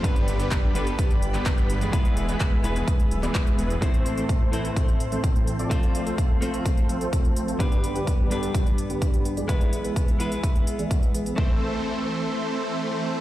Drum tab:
HH |xxxxx-xxxxxxxxxx|xxxxx-xxxxxxxxxx|xxxxx-xxxxxxxxxx|xxxxx-xxxxxxxxxx|
CP |----x------xx---|----x------xx---|----------------|----------------|
BD |o---o---o---o---|o---o---o---o---|o---o---o---o---|o---o---o---o---|

HH |xxxxx-xxxxxxxxxx|xxxxxxxxxxxxxxxx|----------------|
CP |----------------|----------------|----------------|
BD |o---o---o---o---|o---o---o---o---|o---------------|